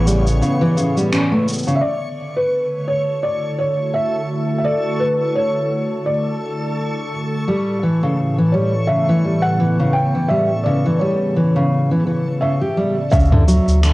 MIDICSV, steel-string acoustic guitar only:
0, 0, Header, 1, 2, 480
1, 0, Start_track
1, 0, Key_signature, 2, "major"
1, 0, Tempo, 705882
1, 1246, Time_signature, 4, 2, 24, 8
1, 9474, End_track
2, 0, Start_track
2, 0, Title_t, "Steel-string acoustic guitar"
2, 0, Program_c, 0, 25
2, 44, Note_on_c, 0, 55, 76
2, 172, Note_off_c, 0, 55, 0
2, 284, Note_on_c, 0, 49, 86
2, 412, Note_off_c, 0, 49, 0
2, 417, Note_on_c, 0, 52, 96
2, 513, Note_off_c, 0, 52, 0
2, 522, Note_on_c, 0, 49, 90
2, 652, Note_off_c, 0, 49, 0
2, 657, Note_on_c, 0, 55, 71
2, 754, Note_off_c, 0, 55, 0
2, 763, Note_on_c, 0, 61, 92
2, 885, Note_off_c, 0, 61, 0
2, 896, Note_on_c, 0, 57, 70
2, 993, Note_off_c, 0, 57, 0
2, 1136, Note_on_c, 0, 49, 96
2, 1233, Note_off_c, 0, 49, 0
2, 5085, Note_on_c, 0, 55, 66
2, 5315, Note_off_c, 0, 55, 0
2, 5325, Note_on_c, 0, 52, 66
2, 5446, Note_off_c, 0, 52, 0
2, 5460, Note_on_c, 0, 49, 77
2, 5687, Note_off_c, 0, 49, 0
2, 5701, Note_on_c, 0, 52, 63
2, 5796, Note_off_c, 0, 52, 0
2, 5806, Note_on_c, 0, 55, 65
2, 5933, Note_off_c, 0, 55, 0
2, 6045, Note_on_c, 0, 49, 77
2, 6173, Note_off_c, 0, 49, 0
2, 6181, Note_on_c, 0, 52, 86
2, 6276, Note_off_c, 0, 52, 0
2, 6286, Note_on_c, 0, 55, 60
2, 6516, Note_off_c, 0, 55, 0
2, 6526, Note_on_c, 0, 52, 71
2, 6647, Note_off_c, 0, 52, 0
2, 6661, Note_on_c, 0, 49, 89
2, 6887, Note_off_c, 0, 49, 0
2, 6901, Note_on_c, 0, 52, 59
2, 6996, Note_off_c, 0, 52, 0
2, 7007, Note_on_c, 0, 55, 69
2, 7134, Note_off_c, 0, 55, 0
2, 7246, Note_on_c, 0, 49, 85
2, 7374, Note_off_c, 0, 49, 0
2, 7381, Note_on_c, 0, 52, 79
2, 7476, Note_off_c, 0, 52, 0
2, 7487, Note_on_c, 0, 55, 73
2, 7716, Note_off_c, 0, 55, 0
2, 7727, Note_on_c, 0, 52, 70
2, 7847, Note_off_c, 0, 52, 0
2, 7859, Note_on_c, 0, 49, 89
2, 8086, Note_off_c, 0, 49, 0
2, 8100, Note_on_c, 0, 52, 62
2, 8195, Note_off_c, 0, 52, 0
2, 8205, Note_on_c, 0, 52, 61
2, 8327, Note_off_c, 0, 52, 0
2, 8445, Note_on_c, 0, 49, 67
2, 8567, Note_off_c, 0, 49, 0
2, 8578, Note_on_c, 0, 67, 68
2, 8674, Note_off_c, 0, 67, 0
2, 8685, Note_on_c, 0, 55, 66
2, 8806, Note_off_c, 0, 55, 0
2, 8924, Note_on_c, 0, 49, 97
2, 9053, Note_off_c, 0, 49, 0
2, 9059, Note_on_c, 0, 50, 96
2, 9155, Note_off_c, 0, 50, 0
2, 9164, Note_on_c, 0, 54, 74
2, 9394, Note_off_c, 0, 54, 0
2, 9406, Note_on_c, 0, 50, 75
2, 9474, Note_off_c, 0, 50, 0
2, 9474, End_track
0, 0, End_of_file